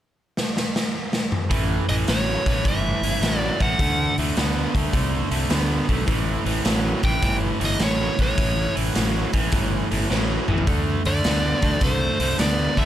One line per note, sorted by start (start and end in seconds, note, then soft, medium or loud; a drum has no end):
0.37 snare medium
0.57 snare medium
0.76 snare medium
1.13 snare medium
1.32 mid tom medium
1.51 1.78 A1 medium
1.51 1.85 A2 medium
1.51 1.85 E3 medium
1.51 kick loud
1.51 open hi-hat medium
1.89 2.03 A1 medium
1.89 2.06 A2 medium
1.89 2.06 E3 medium
1.89 1.94 D#5 medium
1.89 open hi-hat medium
2.08 2.35 A1 medium
2.08 2.43 A2 medium
2.08 2.43 F#3 medium
2.08 2.68 C#5 medium
2.08 snare loud
2.08 open hi-hat medium
2.46 2.59 A1 medium
2.46 2.63 A2 medium
2.46 2.64 E3 medium
2.46 kick medium
2.46 open hi-hat medium
2.65 2.92 G1 medium
2.65 3.00 A2 medium
2.65 3.00 E3 medium
2.65 3.37 E5 medium
2.65 kick medium
2.65 open hi-hat medium
3.01 3.16 G1 medium
3.01 3.21 A2 medium
3.01 3.21 E3 medium
3.01 open hi-hat medium
3.21 3.49 A1 medium
3.21 3.57 A2 medium
3.21 3.57 F#3 medium
3.21 snare loud
3.21 open hi-hat medium
3.37 3.62 D5 medium
3.60 3.74 A1 medium
3.60 3.77 A2 medium
3.60 3.78 E3 medium
3.60 4.15 F#5 medium
3.60 kick medium
3.60 open hi-hat soft
3.79 4.07 D2 medium
3.79 4.14 D3 medium
3.79 4.14 A3 medium
3.79 kick loud
3.79 open hi-hat medium
4.18 4.32 D2 medium
4.18 4.35 D3 medium
4.18 4.36 A3 medium
4.18 open hi-hat medium
4.36 4.64 D2 medium
4.36 4.71 D3 medium
4.36 4.72 B3 medium
4.36 snare loud
4.36 open hi-hat medium
4.74 4.88 D2 medium
4.74 4.92 D3 medium
4.74 4.92 A3 medium
4.74 kick medium
4.74 open hi-hat medium
4.93 5.21 C2 loud
4.93 5.28 D3 medium
4.93 5.29 A3 medium
4.93 kick loud
4.93 open hi-hat medium
5.31 5.45 C2 medium
5.31 5.48 D3 medium
5.31 5.49 A3 medium
5.31 open hi-hat medium
5.50 5.78 D2 medium
5.50 5.85 D3 medium
5.50 5.86 B3 medium
5.50 snare loud
5.50 open hi-hat medium
5.89 6.03 B1 medium
5.89 6.06 D3 medium
5.89 6.06 A3 medium
5.89 kick medium
5.89 open hi-hat soft
6.06 6.36 A1 medium
6.06 6.42 A2 medium
6.06 6.42 E3 medium
6.06 kick loud
6.06 open hi-hat medium
6.45 6.60 A1 medium
6.45 6.63 A2 medium
6.45 6.64 E3 medium
6.45 open hi-hat medium
6.64 6.93 A1 medium
6.64 7.00 A2 medium
6.64 7.00 F#3 medium
6.64 snare loud
6.64 open hi-hat medium
7.03 7.17 A1 medium
7.03 7.21 A2 medium
7.03 7.21 E3 medium
7.03 7.22 G5 medium
7.03 kick medium
7.03 open hi-hat medium
7.22 7.51 G1 medium
7.22 7.58 A2 medium
7.22 7.58 E3 medium
7.22 7.35 G5 medium
7.22 kick loud
7.22 open hi-hat medium
7.60 7.75 G1 medium
7.60 7.79 A2 medium
7.60 7.79 E3 medium
7.60 open hi-hat medium
7.65 7.83 D#5 medium
7.80 8.08 A1 medium
7.80 8.15 A2 medium
7.80 8.15 F#3 medium
7.80 8.18 C#5 medium
7.80 snare loud
7.80 open hi-hat medium
8.19 8.33 A1 medium
8.19 8.36 A2 medium
8.19 8.37 E3 medium
8.19 8.74 C#5 medium
8.19 kick medium
8.19 open hi-hat soft
8.38 8.66 A1 loud
8.38 8.73 A2 medium
8.38 8.73 E3 medium
8.38 kick loud
8.38 open hi-hat medium
8.75 8.90 A1 medium
8.75 8.93 A2 medium
8.75 8.93 E3 medium
8.75 open hi-hat medium
8.94 9.23 A1 medium
8.94 9.29 A2 medium
8.94 9.30 F#3 medium
8.94 snare loud
8.94 open hi-hat medium
9.33 9.47 A1 medium
9.33 9.51 A2 medium
9.33 9.51 E3 medium
9.33 kick medium
9.33 open hi-hat medium
9.52 9.80 G1 medium
9.52 9.87 A2 medium
9.52 9.87 E3 medium
9.52 kick loud
9.52 open hi-hat medium
9.91 10.05 G1 medium
9.91 10.08 A2 medium
9.91 10.08 E3 medium
9.91 open hi-hat medium
10.10 10.38 A1 medium
10.10 10.44 A2 medium
10.10 10.45 F#3 medium
10.10 snare medium
10.48 10.62 A1 medium
10.48 10.65 A2 medium
10.48 10.66 E3 medium
10.48 mid tom medium
10.58 floor tom medium
10.67 10.95 D2 medium
10.67 11.02 D3 medium
10.67 11.02 A3 medium
10.67 kick loud
10.67 open hi-hat medium
11.05 11.19 D2 medium
11.05 11.23 D3 medium
11.05 11.23 A3 medium
11.05 11.84 D5 medium
11.05 open hi-hat medium
11.24 11.52 D2 medium
11.24 11.59 D3 medium
11.24 11.59 B3 medium
11.24 snare loud
11.24 open hi-hat medium
11.62 11.76 D2 medium
11.62 11.80 D3 medium
11.62 11.80 A3 medium
11.62 kick medium
11.62 open hi-hat medium
11.81 12.09 C2 medium
11.81 12.16 D3 medium
11.81 12.17 A3 loud
11.81 12.36 C5 medium
11.81 kick loud
11.81 open hi-hat medium
12.20 12.33 C2 medium
12.20 12.37 D3 medium
12.20 12.37 A3 medium
12.20 open hi-hat medium
12.38 12.67 D2 medium
12.38 12.73 D3 medium
12.38 12.73 B3 medium
12.38 12.79 D5 medium
12.38 snare loud
12.38 open hi-hat medium
12.77 12.85 D2 medium
12.77 12.85 D3 medium
12.77 12.85 A3 medium
12.77 12.85 E5 loud
12.77 kick medium
12.77 open hi-hat soft